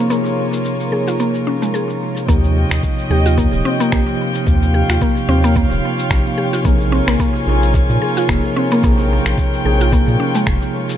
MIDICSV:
0, 0, Header, 1, 6, 480
1, 0, Start_track
1, 0, Tempo, 545455
1, 92, Time_signature, 4, 2, 24, 8
1, 9657, End_track
2, 0, Start_track
2, 0, Title_t, "String section"
2, 0, Program_c, 0, 48
2, 0, Note_on_c, 0, 58, 71
2, 0, Note_on_c, 0, 65, 64
2, 0, Note_on_c, 0, 73, 79
2, 90, Note_on_c, 0, 70, 68
2, 1975, Note_off_c, 0, 58, 0
2, 1975, Note_off_c, 0, 73, 0
2, 1976, Note_off_c, 0, 65, 0
2, 1992, Note_off_c, 0, 70, 0
2, 2013, Note_on_c, 0, 79, 85
2, 2014, Note_on_c, 0, 65, 80
2, 2015, Note_on_c, 0, 73, 76
2, 2016, Note_on_c, 0, 75, 77
2, 3915, Note_off_c, 0, 75, 0
2, 3933, Note_on_c, 0, 77, 77
2, 5817, Note_off_c, 0, 79, 0
2, 5833, Note_off_c, 0, 77, 0
2, 5851, Note_on_c, 0, 70, 76
2, 5851, Note_on_c, 0, 80, 92
2, 7752, Note_off_c, 0, 80, 0
2, 7770, Note_on_c, 0, 79, 92
2, 9656, Note_off_c, 0, 70, 0
2, 9657, Note_off_c, 0, 65, 0
2, 9657, Note_off_c, 0, 73, 0
2, 9657, Note_off_c, 0, 79, 0
2, 9657, End_track
3, 0, Start_track
3, 0, Title_t, "Synth pluck"
3, 0, Program_c, 1, 84
3, 90, Note_on_c, 1, 58, 94
3, 560, Note_off_c, 1, 58, 0
3, 810, Note_on_c, 1, 68, 70
3, 932, Note_off_c, 1, 68, 0
3, 947, Note_on_c, 1, 65, 76
3, 1047, Note_off_c, 1, 65, 0
3, 1055, Note_on_c, 1, 58, 81
3, 1181, Note_off_c, 1, 58, 0
3, 1294, Note_on_c, 1, 61, 73
3, 1420, Note_off_c, 1, 61, 0
3, 1428, Note_on_c, 1, 56, 68
3, 1522, Note_off_c, 1, 56, 0
3, 1531, Note_on_c, 1, 68, 78
3, 1652, Note_off_c, 1, 68, 0
3, 2011, Note_on_c, 1, 58, 104
3, 2481, Note_off_c, 1, 58, 0
3, 2734, Note_on_c, 1, 67, 78
3, 2854, Note_off_c, 1, 67, 0
3, 2867, Note_on_c, 1, 65, 81
3, 2967, Note_off_c, 1, 65, 0
3, 2972, Note_on_c, 1, 58, 79
3, 3100, Note_off_c, 1, 58, 0
3, 3214, Note_on_c, 1, 60, 106
3, 3341, Note_off_c, 1, 60, 0
3, 3347, Note_on_c, 1, 58, 93
3, 3442, Note_off_c, 1, 58, 0
3, 3453, Note_on_c, 1, 58, 107
3, 3922, Note_off_c, 1, 58, 0
3, 4173, Note_on_c, 1, 67, 74
3, 4294, Note_off_c, 1, 67, 0
3, 4307, Note_on_c, 1, 65, 82
3, 4407, Note_off_c, 1, 65, 0
3, 4414, Note_on_c, 1, 58, 90
3, 4541, Note_off_c, 1, 58, 0
3, 4653, Note_on_c, 1, 60, 104
3, 4780, Note_off_c, 1, 60, 0
3, 4788, Note_on_c, 1, 58, 108
3, 4884, Note_off_c, 1, 58, 0
3, 4894, Note_on_c, 1, 58, 94
3, 5362, Note_off_c, 1, 58, 0
3, 5612, Note_on_c, 1, 67, 73
3, 5733, Note_off_c, 1, 67, 0
3, 5748, Note_on_c, 1, 65, 77
3, 5847, Note_off_c, 1, 65, 0
3, 5851, Note_on_c, 1, 58, 81
3, 5979, Note_off_c, 1, 58, 0
3, 6092, Note_on_c, 1, 60, 100
3, 6220, Note_off_c, 1, 60, 0
3, 6229, Note_on_c, 1, 58, 97
3, 6324, Note_off_c, 1, 58, 0
3, 6334, Note_on_c, 1, 58, 110
3, 6802, Note_off_c, 1, 58, 0
3, 7054, Note_on_c, 1, 68, 74
3, 7174, Note_off_c, 1, 68, 0
3, 7190, Note_on_c, 1, 65, 76
3, 7288, Note_off_c, 1, 65, 0
3, 7296, Note_on_c, 1, 58, 85
3, 7422, Note_off_c, 1, 58, 0
3, 7537, Note_on_c, 1, 60, 100
3, 7662, Note_off_c, 1, 60, 0
3, 7672, Note_on_c, 1, 58, 104
3, 7767, Note_off_c, 1, 58, 0
3, 7777, Note_on_c, 1, 58, 101
3, 8244, Note_off_c, 1, 58, 0
3, 8496, Note_on_c, 1, 68, 75
3, 8615, Note_off_c, 1, 68, 0
3, 8633, Note_on_c, 1, 65, 80
3, 8730, Note_off_c, 1, 65, 0
3, 8737, Note_on_c, 1, 58, 81
3, 8862, Note_off_c, 1, 58, 0
3, 8974, Note_on_c, 1, 61, 78
3, 9101, Note_off_c, 1, 61, 0
3, 9109, Note_on_c, 1, 56, 77
3, 9202, Note_off_c, 1, 56, 0
3, 9213, Note_on_c, 1, 68, 78
3, 9334, Note_off_c, 1, 68, 0
3, 9657, End_track
4, 0, Start_track
4, 0, Title_t, "Tine electric piano"
4, 0, Program_c, 2, 4
4, 0, Control_c, 2, 64, 127
4, 0, Note_on_c, 2, 48, 79
4, 0, Note_on_c, 2, 53, 70
4, 0, Note_on_c, 2, 58, 67
4, 0, Note_on_c, 2, 63, 72
4, 0, Note_on_c, 2, 68, 83
4, 71, Note_off_c, 2, 48, 0
4, 71, Note_on_c, 2, 48, 82
4, 79, Note_off_c, 2, 53, 0
4, 79, Note_on_c, 2, 53, 68
4, 88, Note_off_c, 2, 58, 0
4, 88, Note_on_c, 2, 58, 70
4, 97, Note_off_c, 2, 63, 0
4, 97, Note_on_c, 2, 63, 68
4, 106, Note_off_c, 2, 68, 0
4, 106, Note_on_c, 2, 68, 85
4, 776, Note_off_c, 2, 48, 0
4, 780, Note_off_c, 2, 53, 0
4, 784, Note_off_c, 2, 58, 0
4, 789, Note_off_c, 2, 63, 0
4, 793, Note_off_c, 2, 68, 0
4, 800, Note_on_c, 2, 48, 68
4, 804, Note_on_c, 2, 53, 66
4, 808, Note_on_c, 2, 58, 69
4, 813, Note_on_c, 2, 63, 66
4, 818, Note_on_c, 2, 68, 75
4, 951, Note_off_c, 2, 48, 0
4, 953, Note_off_c, 2, 53, 0
4, 955, Note_off_c, 2, 58, 0
4, 957, Note_off_c, 2, 63, 0
4, 960, Note_off_c, 2, 68, 0
4, 1993, Note_on_c, 2, 48, 86
4, 2003, Note_on_c, 2, 53, 77
4, 2009, Note_on_c, 2, 58, 78
4, 2019, Note_on_c, 2, 63, 81
4, 2022, Control_c, 2, 64, 0
4, 2028, Note_on_c, 2, 67, 93
4, 2153, Control_c, 2, 64, 127
4, 2697, Note_off_c, 2, 48, 0
4, 2702, Note_off_c, 2, 53, 0
4, 2705, Note_off_c, 2, 58, 0
4, 2710, Note_off_c, 2, 63, 0
4, 2714, Note_off_c, 2, 67, 0
4, 2721, Note_on_c, 2, 48, 85
4, 2726, Note_on_c, 2, 53, 74
4, 2730, Note_on_c, 2, 58, 71
4, 2735, Note_on_c, 2, 63, 75
4, 2739, Note_on_c, 2, 67, 91
4, 2871, Note_off_c, 2, 48, 0
4, 2874, Note_off_c, 2, 53, 0
4, 2876, Note_off_c, 2, 58, 0
4, 2878, Note_off_c, 2, 63, 0
4, 2881, Note_off_c, 2, 67, 0
4, 3441, Note_on_c, 2, 48, 87
4, 3444, Note_on_c, 2, 53, 81
4, 3450, Note_on_c, 2, 58, 72
4, 3454, Note_on_c, 2, 63, 76
4, 3457, Note_on_c, 2, 67, 93
4, 3901, Note_off_c, 2, 48, 0
4, 3902, Note_off_c, 2, 53, 0
4, 3906, Note_off_c, 2, 58, 0
4, 3907, Note_off_c, 2, 63, 0
4, 3909, Note_off_c, 2, 67, 0
4, 3917, Note_on_c, 2, 48, 85
4, 3926, Note_on_c, 2, 53, 74
4, 3936, Note_on_c, 2, 58, 82
4, 3945, Note_on_c, 2, 63, 79
4, 3952, Note_on_c, 2, 67, 93
4, 4619, Note_off_c, 2, 48, 0
4, 4623, Note_off_c, 2, 53, 0
4, 4628, Note_off_c, 2, 58, 0
4, 4633, Note_off_c, 2, 63, 0
4, 4636, Note_off_c, 2, 67, 0
4, 4644, Note_on_c, 2, 48, 82
4, 4648, Note_on_c, 2, 53, 72
4, 4651, Note_on_c, 2, 58, 75
4, 4655, Note_on_c, 2, 63, 75
4, 4658, Note_on_c, 2, 67, 96
4, 4793, Note_off_c, 2, 48, 0
4, 4795, Note_off_c, 2, 53, 0
4, 4796, Note_off_c, 2, 58, 0
4, 4798, Note_off_c, 2, 63, 0
4, 4800, Note_off_c, 2, 67, 0
4, 5360, Note_on_c, 2, 48, 86
4, 5365, Note_on_c, 2, 53, 80
4, 5368, Note_on_c, 2, 58, 82
4, 5372, Note_on_c, 2, 63, 76
4, 5379, Note_on_c, 2, 67, 91
4, 5820, Note_off_c, 2, 48, 0
4, 5823, Note_off_c, 2, 53, 0
4, 5825, Note_off_c, 2, 58, 0
4, 5827, Note_off_c, 2, 63, 0
4, 5830, Note_off_c, 2, 67, 0
4, 5834, Note_on_c, 2, 48, 90
4, 5841, Note_on_c, 2, 53, 76
4, 5850, Note_on_c, 2, 58, 80
4, 5859, Note_on_c, 2, 63, 75
4, 5864, Control_c, 2, 64, 0
4, 5868, Note_on_c, 2, 68, 93
4, 5999, Control_c, 2, 64, 127
4, 6537, Note_off_c, 2, 48, 0
4, 6541, Note_off_c, 2, 53, 0
4, 6546, Note_off_c, 2, 58, 0
4, 6550, Note_off_c, 2, 63, 0
4, 6554, Note_off_c, 2, 68, 0
4, 6564, Note_on_c, 2, 48, 82
4, 6565, Note_on_c, 2, 53, 78
4, 6573, Note_on_c, 2, 58, 74
4, 6575, Note_on_c, 2, 63, 81
4, 6578, Note_on_c, 2, 68, 91
4, 6713, Note_off_c, 2, 48, 0
4, 6714, Note_off_c, 2, 53, 0
4, 6717, Note_off_c, 2, 58, 0
4, 6718, Note_off_c, 2, 63, 0
4, 6720, Note_off_c, 2, 68, 0
4, 7280, Note_on_c, 2, 48, 86
4, 7284, Note_on_c, 2, 53, 79
4, 7289, Note_on_c, 2, 58, 75
4, 7292, Note_on_c, 2, 63, 81
4, 7297, Note_on_c, 2, 68, 93
4, 7740, Note_off_c, 2, 48, 0
4, 7743, Note_off_c, 2, 53, 0
4, 7745, Note_off_c, 2, 58, 0
4, 7747, Note_off_c, 2, 63, 0
4, 7749, Note_off_c, 2, 68, 0
4, 7755, Note_on_c, 2, 48, 83
4, 7764, Note_on_c, 2, 53, 80
4, 7773, Note_on_c, 2, 58, 77
4, 7781, Note_on_c, 2, 63, 73
4, 7792, Note_on_c, 2, 68, 95
4, 8458, Note_off_c, 2, 48, 0
4, 8463, Note_off_c, 2, 53, 0
4, 8467, Note_off_c, 2, 58, 0
4, 8471, Note_off_c, 2, 63, 0
4, 8477, Note_off_c, 2, 68, 0
4, 8486, Note_on_c, 2, 48, 82
4, 8492, Note_on_c, 2, 53, 77
4, 8495, Note_on_c, 2, 58, 76
4, 8499, Note_on_c, 2, 63, 74
4, 8505, Note_on_c, 2, 68, 95
4, 8634, Note_off_c, 2, 48, 0
4, 8637, Note_off_c, 2, 53, 0
4, 8639, Note_off_c, 2, 58, 0
4, 8641, Note_off_c, 2, 63, 0
4, 8644, Note_off_c, 2, 68, 0
4, 9657, End_track
5, 0, Start_track
5, 0, Title_t, "Analog synth bass"
5, 0, Program_c, 3, 38
5, 2013, Note_on_c, 3, 39, 101
5, 2330, Note_off_c, 3, 39, 0
5, 2388, Note_on_c, 3, 39, 80
5, 2465, Note_off_c, 3, 39, 0
5, 2731, Note_on_c, 3, 39, 93
5, 3049, Note_off_c, 3, 39, 0
5, 3108, Note_on_c, 3, 27, 98
5, 3185, Note_off_c, 3, 27, 0
5, 3454, Note_on_c, 3, 34, 89
5, 3552, Note_off_c, 3, 34, 0
5, 3932, Note_on_c, 3, 39, 100
5, 4250, Note_off_c, 3, 39, 0
5, 4305, Note_on_c, 3, 39, 80
5, 4383, Note_off_c, 3, 39, 0
5, 4650, Note_on_c, 3, 39, 96
5, 4969, Note_off_c, 3, 39, 0
5, 5024, Note_on_c, 3, 27, 87
5, 5103, Note_off_c, 3, 27, 0
5, 5371, Note_on_c, 3, 34, 91
5, 5471, Note_off_c, 3, 34, 0
5, 5852, Note_on_c, 3, 34, 96
5, 6170, Note_off_c, 3, 34, 0
5, 6226, Note_on_c, 3, 34, 83
5, 6304, Note_off_c, 3, 34, 0
5, 6573, Note_on_c, 3, 34, 103
5, 6890, Note_off_c, 3, 34, 0
5, 6948, Note_on_c, 3, 46, 92
5, 7025, Note_off_c, 3, 46, 0
5, 7293, Note_on_c, 3, 29, 93
5, 7391, Note_off_c, 3, 29, 0
5, 7775, Note_on_c, 3, 34, 101
5, 8091, Note_off_c, 3, 34, 0
5, 8149, Note_on_c, 3, 34, 84
5, 8225, Note_off_c, 3, 34, 0
5, 8494, Note_on_c, 3, 34, 96
5, 8811, Note_off_c, 3, 34, 0
5, 8869, Note_on_c, 3, 46, 96
5, 8945, Note_off_c, 3, 46, 0
5, 9213, Note_on_c, 3, 29, 90
5, 9311, Note_off_c, 3, 29, 0
5, 9657, End_track
6, 0, Start_track
6, 0, Title_t, "Drums"
6, 91, Note_on_c, 9, 82, 51
6, 179, Note_off_c, 9, 82, 0
6, 225, Note_on_c, 9, 82, 32
6, 313, Note_off_c, 9, 82, 0
6, 464, Note_on_c, 9, 82, 62
6, 552, Note_off_c, 9, 82, 0
6, 571, Note_on_c, 9, 82, 51
6, 659, Note_off_c, 9, 82, 0
6, 707, Note_on_c, 9, 82, 32
6, 795, Note_off_c, 9, 82, 0
6, 947, Note_on_c, 9, 82, 65
6, 1035, Note_off_c, 9, 82, 0
6, 1052, Note_on_c, 9, 82, 54
6, 1140, Note_off_c, 9, 82, 0
6, 1187, Note_on_c, 9, 82, 32
6, 1275, Note_off_c, 9, 82, 0
6, 1428, Note_on_c, 9, 82, 62
6, 1516, Note_off_c, 9, 82, 0
6, 1533, Note_on_c, 9, 82, 53
6, 1621, Note_off_c, 9, 82, 0
6, 1668, Note_on_c, 9, 82, 31
6, 1756, Note_off_c, 9, 82, 0
6, 1908, Note_on_c, 9, 82, 64
6, 1996, Note_off_c, 9, 82, 0
6, 2012, Note_on_c, 9, 36, 100
6, 2014, Note_on_c, 9, 82, 58
6, 2100, Note_off_c, 9, 36, 0
6, 2102, Note_off_c, 9, 82, 0
6, 2148, Note_on_c, 9, 82, 32
6, 2236, Note_off_c, 9, 82, 0
6, 2388, Note_on_c, 9, 26, 89
6, 2389, Note_on_c, 9, 82, 71
6, 2476, Note_off_c, 9, 26, 0
6, 2477, Note_off_c, 9, 82, 0
6, 2492, Note_on_c, 9, 36, 99
6, 2493, Note_on_c, 9, 82, 57
6, 2580, Note_off_c, 9, 36, 0
6, 2581, Note_off_c, 9, 82, 0
6, 2627, Note_on_c, 9, 82, 33
6, 2715, Note_off_c, 9, 82, 0
6, 2867, Note_on_c, 9, 82, 68
6, 2955, Note_off_c, 9, 82, 0
6, 2972, Note_on_c, 9, 82, 57
6, 2973, Note_on_c, 9, 36, 97
6, 3060, Note_off_c, 9, 82, 0
6, 3061, Note_off_c, 9, 36, 0
6, 3107, Note_on_c, 9, 82, 31
6, 3195, Note_off_c, 9, 82, 0
6, 3347, Note_on_c, 9, 82, 68
6, 3435, Note_off_c, 9, 82, 0
6, 3452, Note_on_c, 9, 26, 90
6, 3453, Note_on_c, 9, 36, 106
6, 3453, Note_on_c, 9, 82, 61
6, 3540, Note_off_c, 9, 26, 0
6, 3541, Note_off_c, 9, 36, 0
6, 3541, Note_off_c, 9, 82, 0
6, 3587, Note_on_c, 9, 82, 32
6, 3675, Note_off_c, 9, 82, 0
6, 3827, Note_on_c, 9, 82, 65
6, 3915, Note_off_c, 9, 82, 0
6, 3932, Note_on_c, 9, 36, 110
6, 3934, Note_on_c, 9, 82, 58
6, 4020, Note_off_c, 9, 36, 0
6, 4022, Note_off_c, 9, 82, 0
6, 4069, Note_on_c, 9, 82, 35
6, 4157, Note_off_c, 9, 82, 0
6, 4309, Note_on_c, 9, 26, 82
6, 4310, Note_on_c, 9, 82, 75
6, 4397, Note_off_c, 9, 26, 0
6, 4398, Note_off_c, 9, 82, 0
6, 4411, Note_on_c, 9, 36, 113
6, 4414, Note_on_c, 9, 82, 57
6, 4499, Note_off_c, 9, 36, 0
6, 4502, Note_off_c, 9, 82, 0
6, 4548, Note_on_c, 9, 82, 35
6, 4636, Note_off_c, 9, 82, 0
6, 4788, Note_on_c, 9, 82, 72
6, 4876, Note_off_c, 9, 82, 0
6, 4891, Note_on_c, 9, 36, 108
6, 4894, Note_on_c, 9, 82, 57
6, 4979, Note_off_c, 9, 36, 0
6, 4982, Note_off_c, 9, 82, 0
6, 5030, Note_on_c, 9, 82, 35
6, 5118, Note_off_c, 9, 82, 0
6, 5269, Note_on_c, 9, 82, 67
6, 5357, Note_off_c, 9, 82, 0
6, 5371, Note_on_c, 9, 36, 109
6, 5375, Note_on_c, 9, 26, 85
6, 5375, Note_on_c, 9, 82, 63
6, 5459, Note_off_c, 9, 36, 0
6, 5463, Note_off_c, 9, 26, 0
6, 5463, Note_off_c, 9, 82, 0
6, 5508, Note_on_c, 9, 82, 34
6, 5596, Note_off_c, 9, 82, 0
6, 5749, Note_on_c, 9, 82, 72
6, 5837, Note_off_c, 9, 82, 0
6, 5851, Note_on_c, 9, 36, 116
6, 5855, Note_on_c, 9, 82, 59
6, 5939, Note_off_c, 9, 36, 0
6, 5943, Note_off_c, 9, 82, 0
6, 5991, Note_on_c, 9, 82, 37
6, 6079, Note_off_c, 9, 82, 0
6, 6229, Note_on_c, 9, 26, 83
6, 6229, Note_on_c, 9, 82, 75
6, 6317, Note_off_c, 9, 26, 0
6, 6317, Note_off_c, 9, 82, 0
6, 6331, Note_on_c, 9, 36, 110
6, 6335, Note_on_c, 9, 82, 62
6, 6419, Note_off_c, 9, 36, 0
6, 6423, Note_off_c, 9, 82, 0
6, 6470, Note_on_c, 9, 82, 36
6, 6558, Note_off_c, 9, 82, 0
6, 6711, Note_on_c, 9, 82, 74
6, 6799, Note_off_c, 9, 82, 0
6, 6812, Note_on_c, 9, 36, 118
6, 6814, Note_on_c, 9, 82, 63
6, 6900, Note_off_c, 9, 36, 0
6, 6902, Note_off_c, 9, 82, 0
6, 6949, Note_on_c, 9, 82, 33
6, 7037, Note_off_c, 9, 82, 0
6, 7190, Note_on_c, 9, 82, 76
6, 7278, Note_off_c, 9, 82, 0
6, 7293, Note_on_c, 9, 36, 106
6, 7296, Note_on_c, 9, 26, 89
6, 7296, Note_on_c, 9, 82, 62
6, 7381, Note_off_c, 9, 36, 0
6, 7384, Note_off_c, 9, 26, 0
6, 7384, Note_off_c, 9, 82, 0
6, 7430, Note_on_c, 9, 82, 35
6, 7518, Note_off_c, 9, 82, 0
6, 7669, Note_on_c, 9, 82, 75
6, 7757, Note_off_c, 9, 82, 0
6, 7774, Note_on_c, 9, 36, 110
6, 7775, Note_on_c, 9, 82, 63
6, 7862, Note_off_c, 9, 36, 0
6, 7863, Note_off_c, 9, 82, 0
6, 7909, Note_on_c, 9, 82, 35
6, 7997, Note_off_c, 9, 82, 0
6, 8149, Note_on_c, 9, 26, 84
6, 8149, Note_on_c, 9, 82, 76
6, 8237, Note_off_c, 9, 26, 0
6, 8237, Note_off_c, 9, 82, 0
6, 8253, Note_on_c, 9, 36, 115
6, 8255, Note_on_c, 9, 82, 59
6, 8341, Note_off_c, 9, 36, 0
6, 8343, Note_off_c, 9, 82, 0
6, 8390, Note_on_c, 9, 82, 34
6, 8478, Note_off_c, 9, 82, 0
6, 8629, Note_on_c, 9, 82, 73
6, 8717, Note_off_c, 9, 82, 0
6, 8733, Note_on_c, 9, 36, 117
6, 8735, Note_on_c, 9, 82, 60
6, 8821, Note_off_c, 9, 36, 0
6, 8823, Note_off_c, 9, 82, 0
6, 8868, Note_on_c, 9, 82, 36
6, 8956, Note_off_c, 9, 82, 0
6, 9107, Note_on_c, 9, 82, 75
6, 9195, Note_off_c, 9, 82, 0
6, 9212, Note_on_c, 9, 26, 81
6, 9212, Note_on_c, 9, 36, 108
6, 9212, Note_on_c, 9, 82, 62
6, 9300, Note_off_c, 9, 26, 0
6, 9300, Note_off_c, 9, 36, 0
6, 9300, Note_off_c, 9, 82, 0
6, 9346, Note_on_c, 9, 82, 37
6, 9434, Note_off_c, 9, 82, 0
6, 9587, Note_on_c, 9, 82, 67
6, 9657, Note_off_c, 9, 82, 0
6, 9657, End_track
0, 0, End_of_file